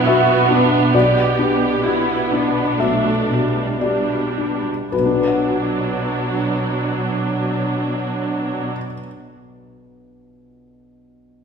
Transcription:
Already playing: F#2 B2 F#3 B3 D4 F#5
0.06 F#4 E5
0.50 D4
0.94 B1 B2 G4 D5
1.39 D4
1.85 B3 E4 G4
2.32 D4
2.79 B1 A3 E5
3.29 B2 G3
3.81 G3 D4 G4 D5
4.38 D4
4.91 B1 B2 F#3 D4 B4
4.99 B2
5.06 D4
5.14 F#4
5.20 B4
5.28 F#5

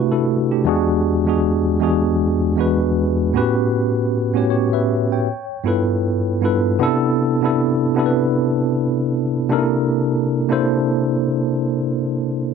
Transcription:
Already playing: C3 A3 D4 E4 F#4 G4 A4 B4
0.12 E4 A4
0.51 D4 G4
0.64 E2 G#3 D4 F#4
0.69 G#4
1.25 E2 G#3 D4 F#4
1.29 G#4
1.79 E2 G#3 D4 F#4
1.83 G#4
2.56 E2 G#3 D4 F#4
2.60 B4
3.33 A2 B3 C#4 F#4 G4 B4
4.33 A2 B3 C#4 F#4 G4
4.37 C#5
4.50 G4 C#5
4.73 B4 E5
5.12 C#5 G5
5.64 G2 B3 E4 F4 A4
5.68 B4
6.41 G2 B3 E4 F4 A4
6.45 B4
6.79 C3 B3 D4 E4 A4
7.41 C3 B3 D4 E4
7.45 A4
7.95 C3 B3 D4 E4
7.99 A4
8.06 B4
9.49 C3 A#3 D4 D#4 A4
9.53 A#4
9.58 E4
10.49 C3 A#3 D4 E4 A4
10.53 C5

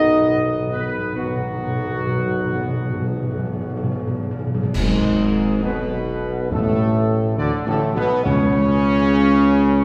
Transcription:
Already playing: B1 D#3 B3 D#4 D#5
0.00 B2
0.07 B2
0.15 B2
0.22 B2
0.29 B2
0.37 B2
0.44 B2
0.60 B2
0.67 B2 B3
0.73 B2 B4
0.83 B2
0.90 B2
0.98 B2
1.06 B2
1.14 B1 B2 D#3 F#3 B3 F#4
1.21 B2
1.29 B2
1.37 B2
1.44 B2
1.52 B2
1.60 B2
1.68 B2
1.76 B2
1.84 B2
1.91 B2
1.99 B2
2.07 B2
2.15 B2
2.23 B2
2.31 B2
2.38 B2
2.46 B2
2.53 B2
2.61 B2
2.69 B2
2.77 B2
2.85 B2
2.93 B2
3.00 B2
3.08 B2
3.16 B2
3.23 B2
3.30 B2
3.38 B2
3.45 B2
3.53 B2
3.61 B2
3.69 B2
3.77 B2
3.84 B2
3.92 B2
3.99 B2
4.08 B2
4.15 B2
4.23 B2
4.31 B2
4.39 B2
4.47 B2
4.55 B2
4.63 B2
4.75 G#1 G#2 G#3 G#4, concert bass drum, crash
5.63 B1 B2 B3 B4
6.51 A1 E2 A2 A3 A4
7.37 D2 D3 D4 D5
7.66 A1 A2 A3 A4
7.95 B1 B2 B3 B4
8.24 C#2 E2 C#3 C#4 C#5

